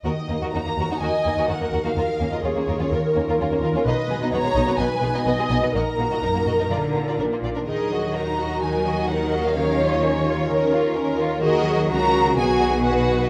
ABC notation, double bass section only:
X:1
M:4/4
L:1/16
Q:1/4=127
K:Ebm
V:1 name="Double bass section" clef=bass
E,, z E,, z E,, z E,, z E,, z E,, z E,, z E,, z | E,, z E,, z E,, z E,, z E,, z E,, z E,, z E,, z | C,, z C,, z C,, z C,, z C,, z C,, z C,, z C,, z | B,,, z B,,, z B,,, z B,,, z B,,, z B,,, z B,,, z B,,, z |
E,,16- | E,,16 | [K:D#m] D,,4 C,,4 B,,,8 |]